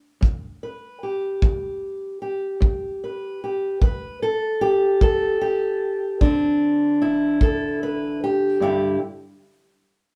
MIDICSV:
0, 0, Header, 1, 3, 480
1, 0, Start_track
1, 0, Key_signature, 1, "major"
1, 0, Tempo, 797872
1, 2295, Time_signature, 12, 3, 24, 8
1, 6106, End_track
2, 0, Start_track
2, 0, Title_t, "Steel-string acoustic guitar"
2, 0, Program_c, 0, 25
2, 126, Note_on_c, 0, 43, 68
2, 379, Note_on_c, 0, 71, 46
2, 562, Note_off_c, 0, 43, 0
2, 620, Note_on_c, 0, 67, 44
2, 862, Note_on_c, 0, 43, 74
2, 1290, Note_off_c, 0, 43, 0
2, 1327, Note_off_c, 0, 67, 0
2, 1334, Note_on_c, 0, 67, 46
2, 1567, Note_on_c, 0, 43, 74
2, 1817, Note_off_c, 0, 71, 0
2, 1827, Note_on_c, 0, 71, 46
2, 2003, Note_off_c, 0, 43, 0
2, 2054, Note_off_c, 0, 67, 0
2, 2068, Note_on_c, 0, 67, 48
2, 2272, Note_off_c, 0, 67, 0
2, 2272, Note_off_c, 0, 71, 0
2, 2294, Note_on_c, 0, 43, 72
2, 2298, Note_on_c, 0, 71, 78
2, 2536, Note_off_c, 0, 71, 0
2, 2541, Note_on_c, 0, 69, 71
2, 2726, Note_off_c, 0, 43, 0
2, 2775, Note_on_c, 0, 67, 84
2, 3013, Note_off_c, 0, 69, 0
2, 3021, Note_on_c, 0, 69, 85
2, 3028, Note_on_c, 0, 43, 70
2, 3250, Note_off_c, 0, 67, 0
2, 3257, Note_on_c, 0, 67, 78
2, 3454, Note_off_c, 0, 43, 0
2, 3733, Note_off_c, 0, 69, 0
2, 3736, Note_off_c, 0, 67, 0
2, 3736, Note_on_c, 0, 62, 79
2, 3739, Note_on_c, 0, 50, 47
2, 3740, Note_on_c, 0, 38, 69
2, 3749, Note_on_c, 0, 60, 46
2, 4170, Note_off_c, 0, 38, 0
2, 4221, Note_on_c, 0, 64, 75
2, 4456, Note_off_c, 0, 62, 0
2, 4458, Note_on_c, 0, 38, 69
2, 4467, Note_on_c, 0, 69, 78
2, 4702, Note_off_c, 0, 69, 0
2, 4710, Note_on_c, 0, 71, 78
2, 4890, Note_off_c, 0, 38, 0
2, 4939, Note_off_c, 0, 64, 0
2, 4943, Note_off_c, 0, 71, 0
2, 4955, Note_on_c, 0, 67, 80
2, 5155, Note_off_c, 0, 60, 0
2, 5175, Note_on_c, 0, 43, 64
2, 5178, Note_off_c, 0, 50, 0
2, 5185, Note_off_c, 0, 67, 0
2, 5185, Note_on_c, 0, 50, 63
2, 5187, Note_on_c, 0, 64, 58
2, 5192, Note_on_c, 0, 67, 71
2, 5392, Note_off_c, 0, 43, 0
2, 5397, Note_off_c, 0, 50, 0
2, 5397, Note_off_c, 0, 64, 0
2, 5408, Note_off_c, 0, 67, 0
2, 6106, End_track
3, 0, Start_track
3, 0, Title_t, "Drums"
3, 136, Note_on_c, 9, 36, 65
3, 196, Note_off_c, 9, 36, 0
3, 856, Note_on_c, 9, 36, 63
3, 916, Note_off_c, 9, 36, 0
3, 1576, Note_on_c, 9, 36, 60
3, 1636, Note_off_c, 9, 36, 0
3, 2296, Note_on_c, 9, 36, 66
3, 2356, Note_off_c, 9, 36, 0
3, 3016, Note_on_c, 9, 36, 65
3, 3076, Note_off_c, 9, 36, 0
3, 3737, Note_on_c, 9, 36, 63
3, 3797, Note_off_c, 9, 36, 0
3, 4458, Note_on_c, 9, 36, 61
3, 4518, Note_off_c, 9, 36, 0
3, 6106, End_track
0, 0, End_of_file